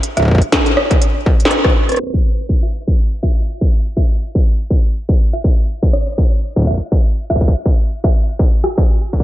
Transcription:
0.03 closed hi-hat
0.17 kick, cross-stick, closed hi-hat
0.20 kick
0.23 kick
0.25 kick
0.28 kick
0.31 kick
0.35 kick
0.38 kick, closed hi-hat
0.52 kick, snare, closed hi-hat
0.66 closed hi-hat
0.77 cross-stick
0.91 kick, closed hi-hat
1.02 closed hi-hat
1.26 kick
1.40 closed hi-hat
1.45 snare
1.51 cross-stick, closed hi-hat
1.64 kick, cross-stick
1.89 cross-stick, closed hi-hat
1.92 cross-stick, closed hi-hat
1.95 cross-stick, closed hi-hat
1.97 cross-stick
2.00 cross-stick
2.03 cross-stick
2.07 cross-stick
2.10 kick, cross-stick
2.49 kick
2.63 cross-stick
2.88 kick
3.23 kick, cross-stick
3.61 kick
3.97 kick, cross-stick
4.35 kick
4.70 kick
5.09 kick
5.33 cross-stick
5.44 kick
5.83 kick
5.93 cross-stick
6.18 kick
6.56 kick
6.59 kick
6.62 kick
6.65 kick, cross-stick
6.67 kick
6.71 kick
6.74 kick
6.78 kick
6.92 kick
7.30 kick, cross-stick
7.36 kick
7.41 kick
7.48 kick
7.66 kick
8.04 kick, cross-stick
8.39 kick
8.64 cross-stick
8.78 kick
9.13 kick
9.20 kick

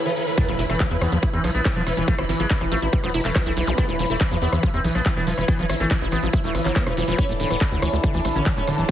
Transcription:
Already playing: E3 E4 B4 B5, riser
0.06 E3
0.16 E3, shaker
0.27 E3, shaker
0.38 E3 B3 E4, kick, closed hi-hat, impact, shaker
0.48 E1 E3 F3, closed hi-hat
0.59 E1 E3 E4, open hi-hat, shaker
0.70 E1 E3 A3, cross-stick, closed hi-hat, shaker
0.79 E3 F3, kick, clap, closed hi-hat, shaker
0.91 E2 E3 E4, closed hi-hat
1.01 E2 E3 B3, cross-stick, open hi-hat, shaker
1.12 E2 E3 F3, closed hi-hat, shaker
1.23 E3 E4, kick, closed hi-hat, shaker
1.33 E2 E3 C4, closed hi-hat
1.44 B1 E3 F3, cross-stick, open hi-hat, shaker
1.55 B1 B3 E4, closed hi-hat, shaker
1.65 E3, kick, clap, closed hi-hat, shaker
1.76 E1 F3 B3, closed hi-hat
1.87 E1 E3 E4, cross-stick, open hi-hat, shaker
1.97 E1 E3, closed hi-hat, shaker
2.08 A3, kick, closed hi-hat, shaker
2.18 G#1 B2 E4, cross-stick, closed hi-hat
2.29 G#1 B2 E3, open hi-hat, shaker
2.40 G#1 F3 G#3, closed hi-hat, shaker
2.50 B2 E4, kick, clap, closed hi-hat, shaker
2.61 A1 B2 E3, cross-stick, closed hi-hat
2.72 A1 F3 A3, open hi-hat, shaker
2.82 A1 B2 E4, closed hi-hat, shaker
2.93 E3, kick, closed hi-hat, shaker
3.04 E1 F3 B3, cross-stick, closed hi-hat
3.14 E1 B2 E4, open hi-hat, shaker
3.25 E1 E3 A3, clap, closed hi-hat, shaker
3.35 B2 F3, kick, cross-stick, clap, closed hi-hat, shaker
3.46 B1 A3 E4, closed hi-hat
3.57 B1 B2 E3, open hi-hat, shaker
3.67 B1 B2 F3, closed hi-hat, zap, shaker
3.78 B3 E4, kick, cross-stick, closed hi-hat, shaker
3.89 E1 E3, closed hi-hat
3.99 E1 E3 F3, open hi-hat, shaker
4.10 E1 A3 E4, shaker
4.21 E3, kick, cross-stick, clap, closed hi-hat, shaker
4.31 E2 E3 F3, closed hi-hat
4.41 E2 B3 E4, open hi-hat, shaker
4.52 E2 E3, cross-stick, closed hi-hat, shaker
4.63 E3 F3, kick, closed hi-hat, shaker
4.74 E2 C4 E4, closed hi-hat
4.84 B1 E3, open hi-hat, shaker
4.95 B1 F3 B3, cross-stick, closed hi-hat, shaker
5.06 E3 E4, kick, clap, closed hi-hat, shaker
5.16 E1 E3 B3, closed hi-hat
5.27 E1 E3 F3, open hi-hat, shaker
5.38 E1 E3 E4, cross-stick, closed hi-hat, shaker
5.48 E3 B3, kick, closed hi-hat, shaker
5.59 G#1 E3 F3, closed hi-hat
5.70 G#1 E3 E4, cross-stick, open hi-hat, shaker
5.80 G#1 E3 A3, closed hi-hat, shaker
5.91 E3, kick, clap, closed hi-hat, shaker
6.01 A1 E3 E4, closed hi-hat
6.11 A1 E3 B3, cross-stick, open hi-hat, shaker
6.23 A1 E3 F3, closed hi-hat, shaker
6.33 E3 E4, kick, closed hi-hat, shaker
6.44 E1 E3 A3, closed hi-hat
6.54 G#1 E3, cross-stick, open hi-hat, shaker
6.65 G#1 E3 F3, clap, shaker
6.76 B3, kick, clap, closed hi-hat, shaker
6.87 E1 E3, cross-stick, closed hi-hat
6.97 E1 E3 F3, open hi-hat, shaker
7.08 E1 E3 F3, closed hi-hat, shaker
7.18 E3 C#4 D4, kick, closed hi-hat, shaker
7.23 A4
7.29 D1 D3 A3, closed hi-hat
7.40 D1 D3, open hi-hat, shaker
7.50 D1 E3 B3, cross-stick, closed hi-hat, shaker
7.61 D3 A3, kick, clap, closed hi-hat, shaker
7.72 D2 D3, closed hi-hat
7.76 A5
7.82 D2 E3 C#4, cross-stick, open hi-hat, shaker
7.92 D2 D3 A3, closed hi-hat, shaker
8.04 D3, kick, closed hi-hat, shaker
8.14 D2 E3 D4, closed hi-hat
8.25 A1 D3 A3, cross-stick, open hi-hat, shaker
8.35 A1 D3 C#4, closed hi-hat, shaker
8.46 D3 E3, kick, clap, closed hi-hat, shaker
8.57 D1 A3 C#4, closed hi-hat
8.67 D1 D3, cross-stick, open hi-hat, shaker
8.78 D1 D3 E3, closed hi-hat, shaker

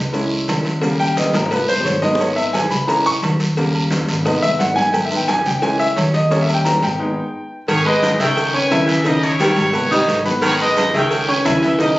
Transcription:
Already playing: C#2
0.13 G#3 C#4 E4, cowbell, high conga, low agogo, long guiro, maracas
0.31 high conga
0.48 D#2, cowbell, high conga, low timbale, low agogo, short guiro, maracas
0.65 cowbell, high conga, short guiro, maracas
0.81 C#3 G3 A#3, cowbell, low agogo, long guiro, maracas
1.00 G5, low agogo, maracas
1.16 D#5, cowbell, high conga, low timbale, short guiro, maracas
1.33 G#1 A#4, cowbell, high bongo, high conga, low agogo, short guiro, maracas
1.46 high bongo
1.51 B4, cowbell, high conga, low conga, low agogo, long guiro, maracas
1.57 high bongo
1.68 G1 C5, high conga, low conga, maracas
1.81 low bongo
1.85 G#1 C#5, cowbell, high conga, low timbale, low agogo, short guiro, maracas
1.92 low bongo
2.02 D#3 G#3 B3 D#5, high conga, low agogo, short guiro, maracas
2.15 low bongo
2.20 C#5, cowbell, high conga, low agogo, long guiro, maracas
2.36 E5, high conga, low agogo, maracas
2.53 G#5, cowbell, high conga, low timbale, low agogo, short guiro, maracas
2.70 C#2 B5, short guiro, maracas
2.87 E3 G#3 C#4 A#5, cowbell, high conga, low agogo, long guiro, maracas
3.06 C#6, high conga, maracas
3.22 D#2, cowbell, high conga, low timbale, low agogo, short guiro, maracas
3.40 cowbell, high conga, short guiro, maracas
3.57 C#3 G3 A#3, cowbell, high conga, low agogo, long guiro, maracas
3.74 high conga, low agogo
3.90 cowbell, high conga, low timbale, short guiro, maracas
4.08 G#1, cowbell, high conga, low agogo, short guiro, maracas
4.25 D#3 G#3 B3 D#5, cowbell, high conga, low conga, low agogo, long guiro, maracas
4.42 G1 E5, high conga, low conga, maracas
4.59 G#1 F#5, cowbell, high conga, low timbale, low agogo, short guiro, maracas
4.76 G#5, high conga, low agogo, short guiro, maracas
4.93 G5, cowbell, high conga, low agogo, long guiro, maracas
5.05 E5
5.11 D#3 G#3 B3, high conga, low agogo, maracas
5.16 G5
5.28 G#5, cowbell, high conga, low timbale, low agogo, short guiro, maracas
5.46 C#2 G5, short guiro, maracas
5.58 E3 G5, cowbell
5.62 G#3 C#4 G#5, high conga, low agogo, long guiro, maracas
5.80 E5, high conga, maracas
5.96 D#2 C#5, cowbell, high conga, low timbale, low agogo, short guiro, maracas
6.14 D#5, cowbell, high conga, short guiro, maracas
6.30 G3 A#3 C#4 C#5, cowbell, high conga, low agogo, long guiro, maracas
6.42 E5
6.49 high conga, low agogo, maracas
6.54 G5
6.65 A#5, cowbell, high conga, low timbale, short guiro, maracas
6.82 G#1 G5, cowbell, high conga, low agogo, short guiro, maracas
6.99 G#3 B3 D#4
7.68 G#1 D#3 G#4 C#5, cowbell, high conga, low agogo, long guiro, maracas
7.85 G#3 G4 B4 D#5, high conga, low agogo
8.02 C#3, cowbell, high conga, low timbale, low agogo, short guiro, maracas
8.19 C#2 D#3 G#4 C#5 E5 G5 E6, short guiro, maracas
8.37 cowbell, high conga, low agogo, long guiro, maracas
8.54 C#4 B4 C#5 G#5 C#6, high conga
8.71 D#2 C#3 E4 E5, cowbell, high conga, low timbale, low agogo, short guiro, maracas
8.88 E3 G#4 E5, cowbell, high conga, short guiro, maracas
9.04 C#3 D#4 G4 D#5, cowbell, high conga, low agogo, long guiro, maracas
9.22 E4 C#5, high conga, low agogo, maracas
9.40 D#3 G3 G4 G5, cowbell, high conga, low timbale, short guiro, maracas
9.56 G#1, cowbell, high conga, low agogo, short guiro, maracas
9.73 B3 B4 B5, cowbell, high conga, low conga, low agogo, long guiro, maracas
9.91 G3 D#4 D#5 D#6, high conga, low conga, maracas
10.08 G#1, cowbell, high conga, low timbale, low agogo, short guiro, maracas
10.25 B3 B4 B5, high conga, low agogo, short guiro, maracas
10.42 D#3 G#4 C#5, cowbell, high conga, low agogo, long guiro, maracas
10.59 G#3 G4 B4 D#5, high conga, low agogo, maracas
10.77 C#3, cowbell, high conga, low timbale, low agogo, short guiro, maracas
10.94 C#2 D#3 G#4 C#5 E5 G5 E6, short guiro, maracas
11.11 cowbell, high conga, low agogo, long guiro, maracas
11.28 C#4 B4 C#5 G#5 C#6, high conga
11.45 D#2 C#3 E4 E5, cowbell, high conga, low timbale, low agogo, short guiro, maracas
11.62 E3 G#4 E5, cowbell, high conga, short guiro, maracas
11.79 C#3 D#4 G4 D#5, cowbell, high conga, low agogo, long guiro, maracas

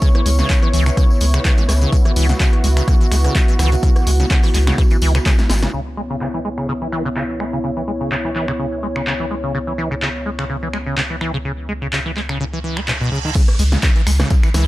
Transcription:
Already playing: B3 E4 C#5
0.02 C#3, kick, closed hi-hat, tambourine
0.15 E3, cross-stick, closed hi-hat
0.26 C#2 G#3, open hi-hat, tambourine
0.39 C#3, snare, closed hi-hat, tambourine
0.49 C#3, kick, clap, closed hi-hat, tambourine
0.63 E3, cross-stick, closed hi-hat
0.73 C#2 E3, open hi-hat, tambourine
0.86 C#3, finger snap, closed hi-hat, tambourine
0.97 C#3, kick, cross-stick, closed hi-hat, tambourine
1.10 tambourine
1.21 C#2 G#3, open hi-hat, tambourine
1.34 C#3, finger snap, cross-stick, closed hi-hat, tambourine
1.45 C#3, kick, clap, closed hi-hat, tambourine
1.58 E3, snare, closed hi-hat, tambourine
1.69 C#2 G#3, cross-stick, snare, open hi-hat, tambourine
1.81 C#3, closed hi-hat, tambourine
1.92 C#3 F#4, kick, closed hi-hat, tambourine
2.05 E3, cross-stick, closed hi-hat
2.16 C#2 E3, open hi-hat, tambourine
2.29 C#3, snare, closed hi-hat, tambourine
2.40 C#3, kick, clap, closed hi-hat, tambourine
2.53 cross-stick, closed hi-hat
2.64 C#2 G#3, open hi-hat, tambourine
2.77 C#3, finger snap, closed hi-hat, tambourine
2.88 C#3, kick, cross-stick, closed hi-hat, tambourine
3.01 E3, tambourine
3.11 C#2 G#3, finger snap, open hi-hat, tambourine
3.24 C#3, cross-stick, closed hi-hat, tambourine
3.35 C#3, kick, clap, closed hi-hat, tambourine
3.48 E3, closed hi-hat, tambourine
3.59 C#2 E3, finger snap, cross-stick, snare, open hi-hat, tambourine
3.72 C#3, closed hi-hat, tambourine
3.83 C#3, kick, closed hi-hat, tambourine
3.96 cross-stick, closed hi-hat, tambourine
4.07 C#2 G#3, open hi-hat, tambourine
4.20 C#3, snare, closed hi-hat, tambourine
4.30 C#3, kick, clap, closed hi-hat, tambourine
4.43 E3, cross-stick, open hi-hat, tambourine
4.54 C#2 G#3, clap, open hi-hat, tambourine
4.67 C#3, finger snap, snare, closed hi-hat, tambourine
4.78 kick, cross-stick, closed hi-hat, tambourine
4.90 E3, closed hi-hat, tambourine
5.02 C#2 E3, open hi-hat, tambourine
5.15 C#3, finger snap, cross-stick, closed hi-hat, tambourine
5.26 C#3, kick, snare, clap, closed hi-hat, tambourine
5.39 snare, closed hi-hat, tambourine
5.50 G#1 G#3, snare, open hi-hat, tambourine
5.63 C#3, snare, closed hi-hat, tambourine
5.73 C#2 C#3 B3 E4 C#5
5.97 G#3
6.10 C#3
6.21 C#3, clap
6.34 E3
6.45 G#3
6.58 C#3, finger snap
6.69 C#3
6.82 E3
6.92 E3, finger snap
7.05 C#3
7.16 C#3, clap
7.40 G#3, finger snap
7.53 C#3
7.64 C#3
7.77 E3
7.88 G#3
8.01 C#3
8.12 C#3, clap
8.24 E3
8.35 E3, clap
8.48 C#3, finger snap
8.59 C#3
8.83 G#3
8.96 C#3, finger snap
9.07 C#3, clap
9.20 E3
9.31 G#3
9.44 C#3
9.54 C#3
9.67 E3
9.78 E3
9.91 C#3
10.02 C#3, clap
10.26 G#3
10.39 C#3, finger snap
10.50 C#3
10.62 E3
10.73 G#3, finger snap
10.86 C#3
10.97 C#3, clap
11.10 E3
11.21 E3, finger snap
11.34 C#3
11.45 C#3
11.69 G#3
11.82 C#3
11.93 C#3, clap
12.06 E3
12.16 G#3, clap
12.29 C#3, finger snap
12.40 C#3, reverse cymbal
12.53 E3
12.64 E3
12.77 B3, finger snap
12.88 B2, clap
13.01 B2
13.12 C#3
13.25 D#3
13.35 C#3, kick, closed hi-hat, crash, tambourine, downlifter
13.48 cross-stick, closed hi-hat
13.59 C#2 G#3, open hi-hat, tambourine
13.72 C#3, snare, closed hi-hat, tambourine
13.83 C#3, kick, cross-stick, clap, closed hi-hat, tambourine
13.96 E3, closed hi-hat
14.07 C#2 G#3, finger snap, open hi-hat, tambourine
14.20 C#3, cross-stick, snare, closed hi-hat, tambourine
14.30 C#3, kick, closed hi-hat, tambourine
14.43 E3, finger snap, tambourine
14.54 C#2 E3, cross-stick, snare, open hi-hat, tambourine

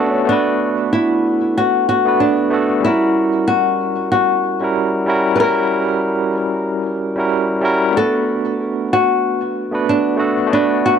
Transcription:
Already playing: A3 B3 D4 F#4 B4
0.00 A4
0.08 C#4
0.25 A3 B3 D4
0.31 F#4 B4
0.93 E4
1.58 F#4
1.89 F#4
2.05 A3 B3 D4 F#4 B4
2.20 D4
2.50 A3 B3 D4 F#4 A4
2.81 G3 C#4 E4
2.85 E4 F#4 A#4
3.48 F#4
4.12 F#4
4.60 G3 C#4 E4 F#4 A#4
5.06 G3 C#4 E4 F#4 A#4
5.36 G3 C#4 B4
5.40 E4 F#4 A#4
7.16 G3 C#4 E4 F#4 A#4
7.61 G3 C#4 E4 F#4 A#4
7.91 A3 B3 D4
7.97 F#4 A4 B4
8.93 F#4
9.71 A3 B3 D4 F#4 B4
9.89 D4
10.17 A3 B3 D4 F#4 A4
10.47 A3 B3
10.51 D4 F#4 B4
10.86 F#4

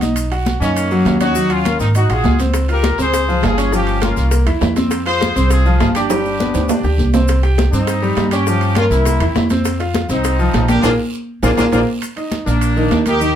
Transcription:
Already playing: B1
0.01 D#4 D#5, high conga, high timbale, short guiro, maracas
0.16 high timbale, long guiro, maracas
0.31 F#4 F#5, high conga, high timbale, maracas
0.46 high conga, high timbale, low timbale, short guiro, maracas
0.60 F#2 A#3 C#4 D#4 D#5, high conga, short guiro, maracas
0.76 high conga, high timbale, long guiro, maracas
0.91 F#3 F#4, high conga, maracas
1.05 D#2, high conga, high timbale, low timbale, short guiro, maracas
1.20 C#4 D#4 F#4 C#5, high conga, high timbale, short guiro, maracas
1.35 F#3 F#4, high conga, maracas
1.50 C#4 F4, high conga, high timbale, maracas
1.65 A#3 A#4, high conga, high timbale, low timbale, short guiro, maracas
1.79 G#1 C4 D#4, high conga, short guiro, maracas
1.95 D#4 F#4 D#5, high conga, high timbale, long guiro, maracas
2.09 A#1 F4 F#4 G#4 F#5, high conga, high timbale, maracas
2.24 C#2, high conga, low timbale, short guiro, maracas
2.39 C4 C5, high conga, high timbale, short guiro, maracas
2.54 high bongo, high timbale, long guiro, maracas
2.69 F4 G4 A#4 F5, high bongo, high conga, high timbale, maracas
2.83 high bongo, high conga, high timbale, low timbale, short guiro, maracas
2.98 C#2 C4 G#4 C5, high bongo, high conga, short guiro, maracas
3.14 high bongo, high conga, high timbale, maracas
3.29 F3 F4, high conga, maracas
3.42 G1 F4 G#4, high bongo, low bongo, high conga, high timbale, low timbale, short guiro, maracas
3.58 C#4 C#5, high bongo, high timbale, short guiro, maracas
3.72 F3 C#4 F4 G4, high bongo, long guiro, maracas
3.87 high conga, high timbale, maracas
4.02 A#3 C#4 F4 A#4, high bongo, high conga, high timbale, low timbale, short guiro, maracas
4.17 C2, high bongo, short guiro, maracas
4.31 A#3 A#4, high bongo, high conga, high timbale, maracas
4.46 E2 E4 E5, high bongo, high conga, high timbale, maracas
4.61 F2, high bongo, low bongo, high conga, low timbale, short guiro, maracas
4.76 C4 C5, high bongo, high conga, high timbale, short guiro, maracas
4.91 high bongo, high conga, high timbale, long guiro, maracas
5.06 F4 G#4 C5 F5, high bongo, high conga, high timbale, maracas
5.21 high bongo, high conga, high timbale, low timbale, short guiro, maracas
5.36 C2 C4 C5, high bongo, high conga, short guiro, maracas
5.50 F4 G#4, high bongo, high conga, high timbale, long guiro, maracas
5.65 F3 F4, high conga, maracas
5.80 G1 F4 G#4, high bongo, low bongo, high conga, high timbale, low timbale, short guiro, maracas
5.95 D4 G4 D5, high bongo, high timbale, short guiro, maracas
6.10 G3 G4, high bongo, high conga, high timbale, maracas
6.25 high conga, maracas
6.39 B3 B4, high bongo, high conga, short guiro, maracas
6.54 D2, high conga, high timbale, short guiro, maracas
6.68 D4 D5, low bongo, high conga, low timbale, long guiro, maracas
6.84 D2 G4 G5, low bongo, high conga, maracas
6.98 C2, low bongo, high conga, short guiro, maracas
7.14 C4 C5, low bongo, high conga, low timbale, short guiro, maracas
7.28 high bongo, high conga, high timbale, maracas
7.43 G4 G5, high bongo, high conga, high timbale, maracas
7.58 high bongo, high conga, high timbale, low timbale, short guiro, maracas
7.72 G2 C4 D#4 C5, high bongo, high conga, short guiro, maracas
7.87 high bongo, high conga, high timbale, long guiro, maracas
8.02 G3 G4, high conga, maracas
8.17 G2, high bongo, low bongo, high conga, high timbale, low timbale, short guiro, maracas
8.31 C#4 G4 C#5, high bongo, high timbale, short guiro, maracas
8.47 F3 F4, high bongo, long guiro, maracas
8.61 high conga, high timbale, maracas
8.75 A#3 C#4 F4 A#4, high bongo, high conga, high timbale, low timbale, short guiro, maracas
8.90 C2 C4 E4, high bongo, short guiro, maracas
9.05 A#3 A#4, high bongo, high conga, high timbale, long guiro, maracas
9.20 E2 E4 E5, high bongo, high conga, high timbale, maracas
9.35 F2, high bongo, low bongo, high conga, low timbale, short guiro, maracas
9.50 C4 C5, high bongo, high conga, high timbale, short guiro, maracas
9.65 high bongo, high conga, high timbale, maracas
9.80 F4 F5, high bongo, high conga, high timbale, maracas
9.94 high bongo, high conga, high timbale, low timbale, short guiro, maracas
10.09 C2 C4 D#4 C5, high bongo, high conga, short guiro, maracas
10.24 high bongo, high conga, high timbale, maracas
10.39 F3 F4, high conga, maracas
10.54 A#1, high bongo, low bongo, high conga, high timbale, low timbale, short guiro, maracas
10.68 A#3 D4 G4 A#4, high bongo, high conga, high timbale, short guiro, maracas
10.82 A#1 A#3 D4 F4 G#4 A#4, low bongo, high conga, high timbale, long guiro, maracas
11.43 A#1 A#3 D4 F4 G#4 A#4, low bongo, high conga, high timbale, long guiro, maracas
11.57 A#1 A#3 D4 F4 G#4 A#4, low bongo, high conga, high timbale, long guiro, maracas
11.72 A#1 A#3 D4 F4 G#4 A#4, low bongo, high conga, high timbale, long guiro, maracas
12.02 high conga, high timbale, long guiro, maracas
12.16 D#4 D#5, high conga, high timbale, maracas
12.32 high conga, high timbale, low timbale, short guiro, maracas
12.46 A#1 A#3 D4 A#4, high conga, short guiro, maracas
12.61 high conga, high timbale, long guiro, maracas
12.76 D#3 D#4, high conga, maracas
12.90 D#2, high conga, high timbale, low timbale, short guiro, maracas
13.06 A#3 D#4 G4 A#4, high conga, high timbale, short guiro, maracas
13.20 D#3 D#4, high conga, maracas

